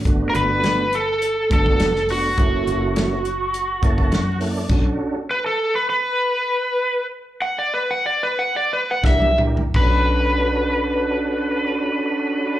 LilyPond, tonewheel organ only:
\new Staff \with { instrumentName = "Tonewheel organ" } { \time 4/4 \key b \minor \tempo 4 = 102 << { r1 | r2 r8 a''8 \tuplet 3/2 { fis''4 d''8 } | r1 | r1 |
r1 | } \\ { <a b d' fis'>4. r4 <a b d' fis'>8 r8 <a b d' fis'>8 | <ais cis' e' a'>4. r4 <ais cis' e' a'>8 r8 <ais cis' e' a'>8 | <cis' d' fis' a'>4 r2. | r2. <d' e' g' bes'>8 <d' e' g' bes'>8 |
<cis' d' fis' a'>1 | } >> }